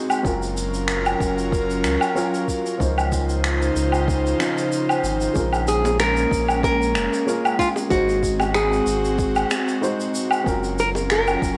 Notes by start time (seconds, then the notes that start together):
Already playing: G#3 C4 D#4 F#4 C5
0.10 low woodblock, shaker
0.23 F#1 F#3 C#4 F4 A#4, kick, shaker
0.27 A#4
0.42 shaker
0.57 shaker
0.74 shaker
0.88 finger snap, shaker
1.06 low woodblock, shaker
1.20 F#1, kick, shaker
1.38 shaker
1.52 kick, shaker
1.70 shaker
1.84 C#2, finger snap, shaker
2.01 low woodblock, shaker
2.15 F#3 C#4 F4 A#4, shaker
2.34 shaker
2.48 kick, shaker
2.66 shaker
2.78 C#2 C#3 F3 C#4 D#4 F4 C5, kick, shaker
2.98 low woodblock, shaker
3.12 kick, shaker
3.29 shaker
3.44 finger snap, shaker
3.62 shaker
3.76 C#2, shaker
3.92 low woodblock, shaker
4.08 kick, shaker
4.27 shaker
4.37 F3 C#4 D#4, finger snap, shaker
4.42 C5
4.58 shaker
4.72 shaker
4.89 low woodblock, shaker
5.03 G#1, shaker
5.21 shaker
5.34 A#1 G#3 A#3 C#4 F4, kick, shaker
5.38 A#4
5.53 low woodblock, shaker
5.67 G#4, shaker
5.85 high bongo, shaker
6.00 A#4, finger snap, shaker
6.17 shaker
6.31 A#1, kick, shaker
6.48 low woodblock, shaker
6.63 A#4, kick, shaker
6.82 shaker
6.95 F1, finger snap, shaker
7.13 shaker
7.26 G#3 C#4 F4 A#4, shaker
7.45 low woodblock, shaker
7.59 F4, kick, shaker
7.76 high bongo, shaker
7.89 G#1 G#3 C4 D#4 F#4, kick, shaker
7.93 C5
8.09 shaker
8.23 kick, shaker
8.40 high bongo, low woodblock, shaker
8.54 G#4, finger snap, shaker
8.73 shaker
8.87 G#1, shaker
9.05 shaker
9.19 kick, shaker
9.36 low woodblock, shaker
9.51 finger snap, high bongo, shaker
9.68 shaker
9.81 G#3 D#4 F#4 C5, shaker
10.00 shaker
10.15 shaker
10.31 low woodblock, shaker
10.44 F#1 F#3 C#4 F4 A#4, kick, shaker
10.48 A#4
10.64 shaker
10.79 A#4, shaker
10.95 high bongo, shaker
11.10 A#4, finger snap, shaker
11.27 low woodblock, shaker
11.42 F#1, kick, shaker